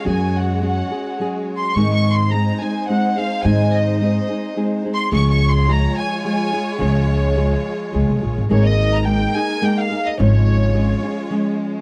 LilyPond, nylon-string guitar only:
\new Staff \with { instrumentName = "Nylon-string guitar" } { \time 3/4 \key des \major \tempo 4 = 107 <ges des' ges' aes'>4 <ges des' ges' aes'>8 <des' ges' aes'>8 <ges des' ges' aes'>4 | <aes, ees aes c' ees' aes'>4 <aes c' ees' aes'>8 <aes c' ees' aes'>8 <aes c' ees' aes'>8 <aes c' ees' aes'>8 | <aes, ees aes c' ees' aes'>4 <aes c' ees' aes'>8 <aes c' ees' aes'>8 <aes c' ees' aes'>8 <aes c' ees' aes'>8 | <des f aes f' aes'>4 <f aes f' aes'>4 <f aes f' aes'>8 <aes f' aes'>8 |
<des f aes f' aes'>4 <f aes f' aes'>4 <f aes f' aes'>8 <aes f' aes'>8 | \key des \lydian <aes bes ees' aes'>4 <aes bes ees' aes'>8 <bes ees' aes'>8 <aes bes ees' aes'>8 <bes ees' aes'>8 | <aes, des f aes des' f'>4 <f aes des' f'>8 <f aes des' f'>8 <f aes des' f'>4 | }